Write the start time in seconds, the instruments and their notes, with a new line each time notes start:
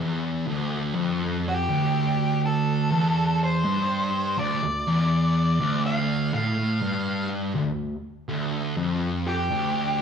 0.00 distorted electric guitar E2
0.47 distorted electric guitar D2
0.95 distorted electric guitar F2
1.49 lead electric guitar G4
1.69 distorted electric guitar D2
2.46 lead electric guitar A4
2.91 distorted electric guitar E2
3.44 lead electric guitar C5
3.66 distorted electric guitar G2
4.38 distorted electric guitar D2, lead electric guitar D5
4.63 distorted electric guitar D2
4.88 distorted electric guitar E2
5.60 distorted electric guitar D2
5.86 lead electric guitar F5
6.34 distorted electric guitar A2, lead electric guitar F5
6.82 distorted electric guitar G2
7.55 distorted electric guitar D2
8.29 distorted electric guitar D2
8.77 distorted electric guitar F2
9.27 lead electric guitar G4
9.51 distorted electric guitar D2